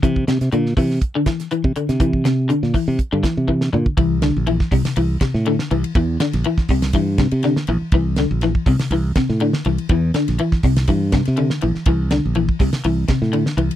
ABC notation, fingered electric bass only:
X:1
M:4/4
L:1/16
Q:"Swing 16ths" 1/4=122
K:Cmix
V:1 name="Fingered electric bass" clef=bass
C,2 C, C, B,,2 C,2 z4 z C, z C,- | C,4- C, B,, z C, z G,, z C,3 B,, z | C,,3 B,,,2 z C,, z C,,2 z A,,2 z C,, z | E,,2 z B,,, z2 C,,2 G,,3 C,2 z B,,, z |
C,,3 B,,,2 z C,, z C,,2 z A,,2 z C,, z | E,,2 z B,,, z2 C,,2 G,,3 C,2 z B,,, z | C,,3 B,,,2 z C,, z C,,2 z A,,2 z C,, z |]